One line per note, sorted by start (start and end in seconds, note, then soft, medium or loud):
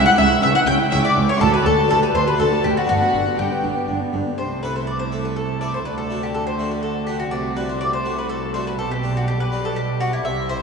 0.00 0.15 C#2 medium
0.00 1.34 A#3 medium
0.00 1.35 E4 medium
0.00 1.36 G4 medium
0.06 0.18 E4 medium
0.06 0.10 F#5 loud
0.06 0.17 F#5 loud
0.06 0.18 F#6 loud
0.17 0.40 C#2 medium
0.17 0.26 C#2 medium
0.17 0.30 C#4 medium
0.17 0.26 E5 loud
0.17 0.41 E5 loud
0.17 0.41 E6 loud
0.30 0.42 E4 medium
0.42 0.51 C#2 medium
0.42 0.51 C#2 loud
0.42 0.65 C#2 medium
0.42 0.53 C#4 medium
0.42 0.54 E5 loud
0.42 0.47 E6 loud
0.54 0.67 E4 medium
0.54 0.67 F#5 loud
0.54 0.66 F#5 loud
0.54 0.60 F#6 loud
0.66 0.75 C#2 medium
0.66 0.89 C#2 medium
0.66 0.79 C#4 medium
0.66 0.91 G5 loud
0.66 0.90 G5 loud
0.66 0.75 G6 loud
0.78 0.91 E4 medium
0.91 1.14 C#2 medium
0.91 1.00 C#2 medium
0.91 1.03 C#4 medium
0.91 0.96 E5 loud
0.91 1.03 E5 loud
0.91 1.03 E6 loud
1.03 1.16 E4 medium
1.03 1.28 D5 medium
1.03 1.27 D5 loud
1.03 1.28 D6 loud
1.16 1.24 C#2 medium
1.16 1.38 C#2 medium
1.16 1.24 C#2 medium
1.16 1.28 C#4 medium
1.28 1.40 E4 medium
1.28 1.33 C#5 loud
1.28 1.40 C#5 loud
1.28 1.40 C#6 loud
1.37 1.49 D2 medium
1.37 1.86 A3 medium
1.37 1.86 D4 medium
1.37 1.88 F#4 medium
1.37 1.52 A4 medium
1.37 1.53 A4 loud
1.37 1.53 A5 loud
1.41 1.49 D2 loud
1.41 1.63 D2 medium
1.41 1.52 A4 loud
1.52 1.65 F#4 medium
1.52 1.65 B4 loud
1.52 1.65 B4 medium
1.52 1.65 B5 loud
1.64 1.73 D2 medium
1.64 1.88 D2 medium
1.64 1.74 D2 medium
1.64 1.77 A4 medium
1.64 1.89 A4 medium
1.64 1.88 A5 loud
1.77 1.90 F#4 medium
1.87 1.98 D2 medium
1.87 2.12 D2 medium
1.87 1.98 D2 medium
1.87 2.35 D4 medium
1.87 2.37 G4 medium
1.87 2.02 A4 loud
1.87 2.01 B4 medium
1.87 1.94 A5 loud
2.02 2.14 G4 medium
2.02 2.14 B4 medium
2.02 2.15 B4 medium
2.02 2.07 B5 medium
2.14 2.23 D2 medium
2.14 2.37 D2 medium
2.14 2.27 B4 medium
2.14 2.26 C5 medium
2.14 2.27 C5 medium
2.14 2.26 C6 loud
2.26 2.39 G4 medium
2.26 2.32 B4 medium
2.26 2.39 B4 medium
2.26 2.39 B5 medium
2.34 2.85 A3 medium
2.34 2.85 D4 medium
2.34 2.86 F#4 medium
2.39 2.47 D2 medium
2.39 2.61 D2 medium
2.39 2.50 A4 medium
2.39 2.47 A4 medium
2.39 2.62 A4 medium
2.39 2.64 A5 loud
2.51 2.64 F#4 medium
2.63 2.86 D2 medium
2.63 2.72 D2 medium
2.63 2.76 G4 medium
2.63 2.76 A4 medium
2.63 2.76 G5 loud
2.76 2.89 F#4 medium
2.76 2.88 F#4 medium
2.76 2.87 F#5 medium
2.84 4.32 B3 medium
2.84 4.32 D4 medium
2.88 2.97 G1 medium
2.88 2.97 G2 medium
2.88 3.11 G2 medium
2.88 3.00 D4 medium
2.88 3.35 F#4 medium
2.88 3.38 F#4 medium
2.88 3.37 F#5 loud
3.01 3.14 B3 medium
3.14 3.22 G1 medium
3.14 3.36 G2 medium
3.14 3.22 G2 medium
3.14 3.26 D4 medium
3.26 3.39 B3 medium
3.38 3.46 G1 medium
3.38 3.47 G2 medium
3.38 3.61 G2 medium
3.38 3.50 D4 medium
3.38 3.88 G4 medium
3.38 3.85 G4 medium
3.38 3.88 G5 medium
3.51 3.63 B3 medium
3.63 3.71 G1 medium
3.63 3.72 G2 medium
3.63 3.86 G2 medium
3.63 3.76 D4 medium
3.76 3.88 B3 medium
3.88 3.96 G1 medium
3.88 4.11 G2 medium
3.88 3.96 G2 medium
3.88 4.00 D4 medium
4.00 4.13 B3 medium
4.13 4.21 G1 medium
4.13 4.35 G2 medium
4.13 4.21 G2 medium
4.13 4.26 D4 medium
4.26 4.38 B3 medium
4.38 5.81 C2 soft
4.38 5.81 C3 soft
4.38 7.28 A3 soft
4.38 5.81 E4 soft
4.38 4.61 C5 medium
4.38 7.28 A5 soft
4.63 4.98 A3 soft
4.63 4.98 E4 soft
4.63 4.99 A4 soft
4.63 4.74 B4 medium
4.76 4.87 C5 medium
4.87 4.99 D5 medium
4.99 5.22 C5 medium
5.12 5.47 A3 soft
5.12 5.47 E4 soft
5.12 5.47 A4 soft
5.25 5.36 B4 medium
5.36 5.59 A4 medium
5.61 5.78 A3 soft
5.61 5.79 E4 soft
5.61 5.79 A4 soft
5.61 5.72 D5 medium
5.74 5.85 C5 soft
5.85 7.29 D2 medium
5.85 7.29 D3 medium
5.85 7.28 D3 soft
5.85 8.79 F#4 medium
5.85 5.97 B4 medium
5.98 6.20 A4 medium
6.10 6.45 A3 soft
6.10 6.45 D4 soft
6.10 6.45 F#4 soft
6.23 6.34 G4 medium
6.34 6.46 A4 medium
6.47 6.69 C5 medium
6.59 6.94 A3 soft
6.59 6.94 D4 soft
6.59 6.94 F#4 soft
6.71 6.82 B4 soft
6.83 7.05 A4 medium
7.07 7.25 A3 soft
7.07 7.25 D4 soft
7.07 7.26 F#4 soft
7.07 7.18 G4 medium
7.20 7.31 F#4 medium
7.31 8.76 C2 medium
7.31 8.76 C3 medium
7.31 8.75 C3 soft
7.31 8.76 A3 medium
7.31 7.54 D5 medium
7.31 8.76 A5 medium
7.56 7.91 A3 soft
7.56 7.92 D4 soft
7.56 7.92 F#4 soft
7.56 7.68 B4 medium
7.69 7.80 C5 medium
7.81 7.92 D5 medium
7.93 8.16 C5 medium
8.05 8.40 A3 soft
8.05 8.41 D4 soft
8.05 8.41 F#4 soft
8.18 8.29 B4 medium
8.29 8.52 A4 medium
8.54 8.72 A3 soft
8.54 8.72 D4 soft
8.54 8.72 F#4 soft
8.54 8.65 C5 medium
8.67 8.78 B4 medium
8.78 10.25 B1 medium
8.78 10.25 B2 medium
8.78 10.21 B2 soft
8.78 10.62 G3 medium
8.78 10.62 G4 medium
8.78 8.90 A4 medium
8.78 10.25 D6 medium
8.91 9.14 G4 medium
9.03 9.38 D4 soft
9.03 9.39 G4 soft
9.17 9.27 F#4 medium
9.28 9.39 G4 medium
9.40 9.63 B4 medium
9.52 9.87 D4 soft
9.52 9.87 G4 soft
9.65 9.76 A4 medium
9.76 9.99 G4 medium
10.00 10.18 D4 soft
10.00 10.12 F#4 medium
10.00 10.18 G4 soft
10.13 10.24 E4 medium
10.24 10.62 C2 medium
10.24 10.62 C3 soft
10.24 10.62 C3 medium
10.24 10.47 E5 medium
10.24 10.62 C6 medium
10.49 10.62 E4 soft
10.49 10.62 C5 soft
10.49 10.61 C5 medium